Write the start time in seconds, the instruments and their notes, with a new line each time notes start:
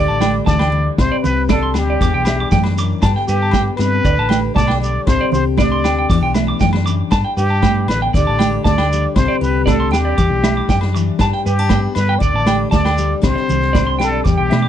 Already playing: steel-string acoustic guitar D3 G3 D4 G4, muted trumpet D5
0.08 fingered electric bass A1, clean electric guitar A5
0.21 steel-string acoustic guitar G4, clean electric guitar G5, snare, muted conga, high conga, low agogo, shekere
0.46 fingered electric bass D2, steel-string acoustic guitar E3, muted trumpet D5, clean electric guitar A5, kick, snare, high conga, shekere
0.59 clean electric guitar G5, snare, low agogo
0.72 steel-string acoustic guitar D3
0.98 fingered electric bass C2, steel-string acoustic guitar C3, muted trumpet C5, kick, snare, muted conga, low agogo, shekere
1.12 clean electric guitar D5
1.22 fingered electric bass C2, steel-string acoustic guitar G4, muted trumpet B4, low conga, shekere
1.49 steel-string acoustic guitar D4, muted trumpet A4, clean electric guitar D5, kick, snare, high conga, low conga, low agogo, shekere
1.63 clean electric guitar C6
1.74 fingered electric bass D2, steel-string acoustic guitar G3, muted clean electric guitar stroke, snare, muted conga, low agogo, shekere
1.78 muted trumpet G4
1.90 clean electric guitar D5
2.00 fingered electric bass E2, steel-string acoustic guitar E2 E3 D4, clean electric guitar D6, kick, snare, muted conga, shekere
2.14 fingered electric bass B1, clean electric guitar G5
2.25 steel-string acoustic guitar D4, clean electric guitar E5, snare, muted conga, low agogo, shekere
2.40 clean electric guitar D6
2.52 steel-string acoustic guitar E2, fingered electric bass F#2, clean electric guitar G5, kick, snare, high conga, shekere
2.64 snare, low agogo
2.78 steel-string acoustic guitar F#2, clean electric guitar D6, shekere
3.02 steel-string acoustic guitar G2 D3 B3, fingered electric bass G2, clean electric guitar A5, muted steel-string acoustic guitar stroke, kick, snare, low agogo, shekere
3.06 steel-string acoustic guitar G4
3.16 clean electric guitar G5, snare
3.28 fingered electric bass G2, steel-string acoustic guitar D4, muted trumpet G4, clean electric guitar B4, shekere
3.42 clean electric guitar A5
3.51 clean electric guitar G5, kick, snare, high conga, low agogo, shekere
3.76 fingered electric bass G2, steel-string acoustic guitar C3, muted trumpet B4, snare, low agogo
3.81 shekere
4.04 fingered electric bass D2, steel-string acoustic guitar D3, clean electric guitar D5, kick, muted conga, shekere
4.18 fingered electric bass A1, clean electric guitar A5
4.29 steel-string acoustic guitar G4, clean electric guitar G5, snare, muted conga, high conga, low agogo, shekere
4.55 fingered electric bass B1, steel-string acoustic guitar D4, muted trumpet D5, clean electric guitar A5, kick, snare, high conga
4.59 shekere
4.67 clean electric guitar G5, snare, low agogo
4.81 steel-string acoustic guitar G3, muted trumpet D5, shekere
5.06 fingered electric bass C2, steel-string acoustic guitar C3, muted trumpet C5, kick, snare, low agogo, shekere
5.21 clean electric guitar D5
5.32 fingered electric bass C2, steel-string acoustic guitar G4, muted trumpet C5, low conga, shekere
5.57 steel-string acoustic guitar D4, clean electric guitar D5, muted trumpet D5, kick, snare, high conga, low conga, low agogo, shekere
5.72 clean electric guitar C6
5.84 fingered electric bass D2, clean electric guitar G5, snare, low agogo, shekere
5.98 clean electric guitar G5
6.10 fingered electric bass E2, steel-string acoustic guitar E2 E3 D4 G4, clean electric guitar D6, muted steel-string acoustic guitar stroke, kick, snare, muted conga, shekere
6.22 fingered electric bass B1, clean electric guitar G5
6.34 steel-string acoustic guitar G4, clean electric guitar E5, snare, muted conga, high conga, low agogo, shekere
6.48 clean electric guitar D6
6.60 steel-string acoustic guitar E2, fingered electric bass F#2, clean electric guitar G5, kick, snare, high conga, shekere
6.73 snare, low agogo
6.86 steel-string acoustic guitar F#2, clean electric guitar D6, shekere
7.11 steel-string acoustic guitar G2, fingered electric bass G2, clean electric guitar A5, kick, snare, low agogo, shekere
7.24 clean electric guitar G5
7.37 fingered electric bass G2, steel-string acoustic guitar D4, muted trumpet G4, clean electric guitar B4, shekere
7.50 clean electric guitar A5
7.62 steel-string acoustic guitar B3, clean electric guitar G5, kick, snare, high conga, low agogo, shekere
7.87 fingered electric bass A1, steel-string acoustic guitar D3, muted trumpet B4, snare, muted conga, low agogo, shekere
8.02 clean electric guitar G5
8.13 fingered electric bass D2, steel-string acoustic guitar D3 G3 D4 G4, clean electric guitar D5, muted trumpet D5, kick, snare, muted conga, shekere
8.27 fingered electric bass A1, clean electric guitar A5
8.39 steel-string acoustic guitar G4, clean electric guitar G5, snare, muted conga, high conga, low agogo, shekere
8.64 fingered electric bass D2, steel-string acoustic guitar D4, muted trumpet D5, clean electric guitar A5, kick, snare, high conga, shekere
8.78 clean electric guitar G5, snare, low agogo
8.93 steel-string acoustic guitar G3, shekere
9.15 fingered electric bass C2, steel-string acoustic guitar C3, muted trumpet C5, kick, snare, muted conga, low agogo, shekere
9.28 clean electric guitar D5
9.41 fingered electric bass C2, steel-string acoustic guitar G4, muted trumpet B4, shekere
9.66 steel-string acoustic guitar D4, muted trumpet A4, clean electric guitar D5, kick, snare, high conga, low conga, low agogo, shekere
9.80 clean electric guitar C6
9.91 fingered electric bass D#2, steel-string acoustic guitar G3, muted trumpet G4, clean electric guitar G5, snare, low agogo, shekere
10.05 clean electric guitar D5
10.18 fingered electric bass E2, steel-string acoustic guitar E3 G3 D4, clean electric guitar D6, muted steel-string acoustic guitar stroke, kick, muted conga, shekere
10.30 fingered electric bass B1
10.43 steel-string acoustic guitar D4, clean electric guitar E5, snare, muted conga, high conga, low agogo, shekere
10.57 clean electric guitar D6
10.69 fingered electric bass F#2, clean electric guitar G5, kick, snare, high conga, shekere
10.81 snare, low agogo
10.95 steel-string acoustic guitar E3, muted clean electric guitar stroke, shekere
11.19 fingered electric bass G2, steel-string acoustic guitar G2, clean electric guitar A5, kick, snare, muted conga, low agogo, shekere
11.32 clean electric guitar G5, snare
11.46 fingered electric bass G2, steel-string acoustic guitar B3, muted trumpet G4, clean electric guitar B4, shekere
11.59 steel-string acoustic guitar D4, clean electric guitar A5
11.69 steel-string acoustic guitar B3, clean electric guitar G5, kick, snare, high conga, low agogo, shekere
11.95 fingered electric bass G2, steel-string acoustic guitar D3, muted trumpet B4, snare, muted conga, low agogo, shekere
12.09 clean electric guitar G5
12.19 fingered electric bass D2, steel-string acoustic guitar D3, muted trumpet D5, clean electric guitar D5, kick, muted conga, shekere
12.34 fingered electric bass A1, clean electric guitar A5
12.46 steel-string acoustic guitar G4, clean electric guitar G5, snare, muted conga, high conga, low agogo, shekere
12.71 fingered electric bass D2, steel-string acoustic guitar D4, muted trumpet D5, clean electric guitar A5, kick, snare, high conga, shekere
12.85 clean electric guitar G5, snare, low agogo
12.98 steel-string acoustic guitar G3, shekere
13.22 fingered electric bass C2, steel-string acoustic guitar C3 G3 D4 G4, muted trumpet C5, kick, snare, muted conga, low agogo, shekere
13.36 muted clean electric guitar stroke, snare
13.49 fingered electric bass C2, steel-string acoustic guitar G4, low conga, shekere
13.62 snare
13.73 steel-string acoustic guitar D4, clean electric guitar D5, kick, snare, high conga, low conga, low agogo, shekere
13.87 clean electric guitar C6
13.99 fingered electric bass B1, steel-string acoustic guitar G3, clean electric guitar G5, snare, muted conga, low agogo, shekere
14.03 muted trumpet A4
14.12 clean electric guitar D5
14.24 steel-string acoustic guitar E2, fingered electric bass E2, muted trumpet G4, clean electric guitar D6, kick, snare, muted conga, shekere
14.38 fingered electric bass B1, clean electric guitar G5
14.50 fingered electric bass B2, steel-string acoustic guitar D4, clean electric guitar E5, snare, muted conga, high conga, low agogo
14.62 clean electric guitar D6